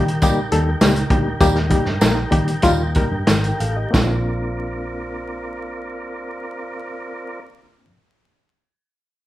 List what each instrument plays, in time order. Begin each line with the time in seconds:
Already playing: fingered electric bass D#3, reed electric piano G3 A#3 D#4 G4, tonewheel organ D#4 G4 A#4 G5
0.08 closed hi-hat
0.22 reed electric piano G3 A#3 D#4 G4, kick, closed hi-hat, tambourine
0.51 fingered electric bass D#2, reed electric piano G3 A#3 D#4 A4, closed hi-hat
0.81 fingered electric bass C#2, reed electric piano G3 A#3 D#4 G4, snare, closed hi-hat, tambourine
0.96 closed hi-hat
1.10 fingered electric bass D2, reed electric piano G3 A#3 D#4 G4, kick, closed hi-hat
1.40 fingered electric bass D#2, reed electric piano G3 A#3 D#4 G4, kick, closed hi-hat, tambourine
1.55 snare
1.70 reed electric piano G3 A#3 D#4 G4, kick, closed hi-hat
1.85 fingered electric bass G2, snare
2.01 fingered electric bass A#1, reed electric piano G3 A#3 D#4 A#4, snare, closed hi-hat, tambourine
2.31 fingered electric bass D#3, reed electric piano G3 A#3 D#4 G4, kick, closed hi-hat
2.48 closed hi-hat
2.62 fingered electric bass D#2, reed electric piano G3 A#3 D#4 F4, kick, closed hi-hat, tambourine
2.95 reed electric piano G3 A#3 D#4 A#4, kick, closed hi-hat
3.12 fingered electric bass G2
3.27 fingered electric bass G#1, snare, closed hi-hat, tambourine
3.44 reed electric piano A#4 G5, closed hi-hat
3.60 fingered electric bass A1, reed electric piano A4 F5, closed hi-hat
3.76 reed electric piano G4 D#5
3.91 fingered electric bass A#1, reed electric piano A#3 C4 D4, kick, snare, tambourine
3.95 tonewheel organ C4 F4 A#4 D5, reed electric piano F4